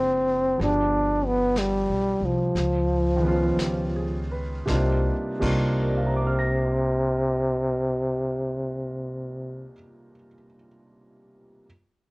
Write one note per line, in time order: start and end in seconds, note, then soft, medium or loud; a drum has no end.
0.00 0.55 F#1 medium
0.00 0.56 F3 soft
0.00 0.59 G#3 soft
0.00 0.60 C4 soft
0.00 0.60 C4 medium
0.00 0.60 D4 soft
0.00 0.58 G#4 soft
0.58 1.83 G1 medium
0.58 2.53 F3 soft
0.58 2.54 B3 soft
0.58 2.54 G#4 soft
0.58 brush sweep soft
0.58 snare soft
0.62 2.55 D4 soft
0.62 1.28 D4 medium
0.62 2.56 G4 soft
1.26 1.60 B3 medium
1.56 2.26 G3 medium
1.56 snare soft
1.56 hi-hat pedal soft
1.89 2.19 B1 soft
2.21 2.52 C2 medium
2.21 4.31 F3 medium
2.55 3.54 C#2 medium
2.55 brush sweep soft
2.55 snare soft
3.16 4.64 D#3 soft
3.16 4.65 G#3 soft
3.22 4.67 B3 soft
3.22 4.68 C#4 soft
3.28 4.68 F4 medium
3.57 4.62 C#2 medium
3.57 4.26 G4 soft
3.57 snare soft
3.57 hi-hat pedal soft
3.96 4.51 G#4 soft
4.32 4.88 B4 soft
4.66 5.08 C2 medium
4.66 5.11 C3 medium
4.66 5.11 G3 soft
4.66 5.11 A#3 soft
4.66 5.12 D4 soft
4.66 5.12 D#4 soft
4.66 5.13 F4 medium
4.66 kick soft
4.66 snare medium
4.72 5.11 C3 medium
5.39 9.69 C2 medium
5.39 9.71 C3 soft
5.39 9.72 G3 soft
5.39 9.72 A#3 medium
5.39 9.72 D4 medium
5.39 9.73 D#4 medium
5.39 9.74 F4 medium
5.39 kick soft
5.39 crash soft
5.46 9.74 C3 medium
5.82 10.10 A#4 soft
5.88 10.16 D5 soft
5.98 10.25 F5 soft
6.06 10.34 A#5 soft
6.17 10.45 D6 soft
6.27 10.55 F6 soft
6.39 10.67 A#6 soft